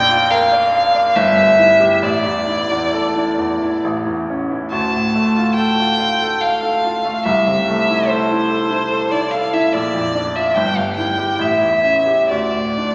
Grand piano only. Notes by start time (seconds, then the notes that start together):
Already playing: A#1 F2 D4
0.10 F4
0.31 A#4
0.52 D5
0.72 F5
0.95 D5
1.16 G1
1.37 G2
1.58 E4
1.80 G4
2.02 A1
2.24 E2
2.47 E4
2.70 E2
2.93 A4
3.15 E4
3.38 E2
3.62 E4
3.84 A1
4.06 E2
4.30 C#4
4.50 E4
4.72 D2
4.95 A2
5.15 A3
5.36 F4
5.58 A4
5.80 F4
5.99 F5
6.22 A4
6.43 F5
6.63 A4
6.84 F4
7.05 A3
7.25 C2
7.47 C3
7.69 A3
7.89 E4
8.10 A4
8.31 E4
8.50 A4
8.71 E4
8.91 A4
9.12 E4
9.34 A4
9.53 E4
9.74 A#1
9.95 F2
10.14 D4
10.35 F4
10.57 G1
10.77 G2
10.98 E4
11.18 G4
11.39 A1
11.62 E2
11.84 C#4
12.07 G4
12.31 D2
12.54 A2
12.77 D4